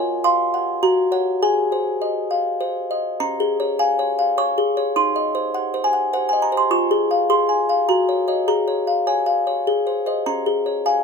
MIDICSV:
0, 0, Header, 1, 2, 480
1, 0, Start_track
1, 0, Key_signature, -5, "major"
1, 0, Tempo, 589391
1, 1159, Time_signature, 3, 2, 24, 8
1, 8989, End_track
2, 0, Start_track
2, 0, Title_t, "Music box"
2, 0, Program_c, 0, 10
2, 0, Note_on_c, 0, 65, 98
2, 0, Note_on_c, 0, 73, 66
2, 0, Note_on_c, 0, 80, 127
2, 180, Note_off_c, 0, 80, 0
2, 197, Note_on_c, 0, 77, 64
2, 198, Note_on_c, 0, 84, 118
2, 343, Note_off_c, 0, 73, 0
2, 439, Note_on_c, 0, 78, 55
2, 581, Note_off_c, 0, 77, 0
2, 649, Note_off_c, 0, 65, 0
2, 658, Note_off_c, 0, 84, 0
2, 674, Note_on_c, 0, 66, 80
2, 675, Note_on_c, 0, 82, 88
2, 678, Note_off_c, 0, 78, 0
2, 911, Note_on_c, 0, 73, 53
2, 913, Note_on_c, 0, 78, 54
2, 1132, Note_off_c, 0, 73, 0
2, 1133, Note_off_c, 0, 78, 0
2, 1139, Note_off_c, 0, 82, 0
2, 1143, Note_off_c, 0, 66, 0
2, 1160, Note_on_c, 0, 68, 74
2, 1161, Note_on_c, 0, 80, 90
2, 1402, Note_on_c, 0, 72, 46
2, 1641, Note_on_c, 0, 75, 51
2, 1790, Note_off_c, 0, 72, 0
2, 1879, Note_on_c, 0, 77, 46
2, 2030, Note_off_c, 0, 75, 0
2, 2096, Note_off_c, 0, 80, 0
2, 2122, Note_on_c, 0, 72, 49
2, 2124, Note_off_c, 0, 77, 0
2, 2368, Note_on_c, 0, 75, 46
2, 2512, Note_off_c, 0, 72, 0
2, 2580, Note_off_c, 0, 68, 0
2, 2607, Note_on_c, 0, 61, 66
2, 2607, Note_on_c, 0, 82, 105
2, 2610, Note_off_c, 0, 75, 0
2, 2769, Note_on_c, 0, 68, 59
2, 2930, Note_on_c, 0, 73, 54
2, 3027, Note_off_c, 0, 68, 0
2, 3070, Note_off_c, 0, 82, 0
2, 3089, Note_on_c, 0, 77, 57
2, 3089, Note_on_c, 0, 80, 81
2, 3186, Note_off_c, 0, 73, 0
2, 3250, Note_on_c, 0, 73, 55
2, 3345, Note_off_c, 0, 77, 0
2, 3410, Note_on_c, 0, 77, 51
2, 3505, Note_off_c, 0, 73, 0
2, 3549, Note_off_c, 0, 80, 0
2, 3565, Note_on_c, 0, 73, 56
2, 3567, Note_on_c, 0, 85, 99
2, 3665, Note_off_c, 0, 77, 0
2, 3729, Note_on_c, 0, 68, 51
2, 3822, Note_off_c, 0, 73, 0
2, 3885, Note_on_c, 0, 73, 55
2, 3984, Note_off_c, 0, 68, 0
2, 4013, Note_off_c, 0, 61, 0
2, 4027, Note_off_c, 0, 85, 0
2, 4040, Note_on_c, 0, 84, 106
2, 4042, Note_on_c, 0, 63, 73
2, 4046, Note_off_c, 0, 73, 0
2, 4201, Note_on_c, 0, 75, 61
2, 4355, Note_on_c, 0, 72, 57
2, 4458, Note_off_c, 0, 75, 0
2, 4516, Note_on_c, 0, 78, 68
2, 4614, Note_off_c, 0, 72, 0
2, 4674, Note_on_c, 0, 72, 63
2, 4729, Note_off_c, 0, 84, 0
2, 4757, Note_on_c, 0, 80, 102
2, 4773, Note_off_c, 0, 78, 0
2, 4829, Note_on_c, 0, 78, 56
2, 4932, Note_off_c, 0, 72, 0
2, 4988, Note_off_c, 0, 78, 0
2, 4988, Note_off_c, 0, 80, 0
2, 4995, Note_on_c, 0, 72, 63
2, 4998, Note_on_c, 0, 78, 80
2, 5118, Note_off_c, 0, 78, 0
2, 5121, Note_on_c, 0, 80, 84
2, 5155, Note_on_c, 0, 75, 55
2, 5231, Note_on_c, 0, 82, 91
2, 5239, Note_off_c, 0, 80, 0
2, 5252, Note_off_c, 0, 72, 0
2, 5312, Note_on_c, 0, 72, 59
2, 5354, Note_off_c, 0, 82, 0
2, 5354, Note_on_c, 0, 84, 85
2, 5412, Note_off_c, 0, 75, 0
2, 5441, Note_off_c, 0, 63, 0
2, 5463, Note_on_c, 0, 65, 65
2, 5464, Note_on_c, 0, 85, 107
2, 5474, Note_off_c, 0, 72, 0
2, 5475, Note_off_c, 0, 84, 0
2, 5627, Note_on_c, 0, 68, 60
2, 5789, Note_on_c, 0, 77, 54
2, 5886, Note_off_c, 0, 68, 0
2, 5928, Note_off_c, 0, 85, 0
2, 5943, Note_on_c, 0, 68, 55
2, 5944, Note_on_c, 0, 84, 111
2, 6047, Note_off_c, 0, 77, 0
2, 6099, Note_on_c, 0, 80, 62
2, 6203, Note_off_c, 0, 68, 0
2, 6266, Note_on_c, 0, 77, 57
2, 6362, Note_off_c, 0, 80, 0
2, 6397, Note_off_c, 0, 65, 0
2, 6408, Note_off_c, 0, 84, 0
2, 6423, Note_on_c, 0, 66, 65
2, 6423, Note_on_c, 0, 82, 89
2, 6429, Note_off_c, 0, 77, 0
2, 6586, Note_on_c, 0, 73, 49
2, 6731, Note_off_c, 0, 73, 0
2, 6741, Note_on_c, 0, 73, 41
2, 6746, Note_on_c, 0, 75, 45
2, 6889, Note_off_c, 0, 82, 0
2, 6891, Note_off_c, 0, 73, 0
2, 6893, Note_off_c, 0, 75, 0
2, 6894, Note_off_c, 0, 66, 0
2, 6904, Note_on_c, 0, 68, 57
2, 6905, Note_on_c, 0, 82, 87
2, 7065, Note_on_c, 0, 73, 47
2, 7226, Note_on_c, 0, 77, 44
2, 7327, Note_off_c, 0, 73, 0
2, 7372, Note_off_c, 0, 82, 0
2, 7387, Note_on_c, 0, 73, 53
2, 7387, Note_on_c, 0, 80, 63
2, 7487, Note_off_c, 0, 77, 0
2, 7544, Note_on_c, 0, 77, 50
2, 7648, Note_off_c, 0, 73, 0
2, 7712, Note_on_c, 0, 73, 47
2, 7806, Note_off_c, 0, 77, 0
2, 7843, Note_off_c, 0, 68, 0
2, 7853, Note_off_c, 0, 80, 0
2, 7874, Note_off_c, 0, 73, 0
2, 7877, Note_on_c, 0, 68, 57
2, 8036, Note_on_c, 0, 72, 40
2, 8186, Note_off_c, 0, 72, 0
2, 8195, Note_on_c, 0, 72, 44
2, 8201, Note_on_c, 0, 75, 43
2, 8341, Note_off_c, 0, 72, 0
2, 8344, Note_off_c, 0, 68, 0
2, 8344, Note_off_c, 0, 75, 0
2, 8358, Note_on_c, 0, 82, 83
2, 8360, Note_on_c, 0, 61, 60
2, 8521, Note_on_c, 0, 68, 47
2, 8681, Note_on_c, 0, 73, 39
2, 8775, Note_off_c, 0, 68, 0
2, 8819, Note_off_c, 0, 82, 0
2, 8842, Note_on_c, 0, 77, 48
2, 8844, Note_on_c, 0, 80, 70
2, 8935, Note_off_c, 0, 73, 0
2, 8989, Note_off_c, 0, 61, 0
2, 8989, Note_off_c, 0, 77, 0
2, 8989, Note_off_c, 0, 80, 0
2, 8989, End_track
0, 0, End_of_file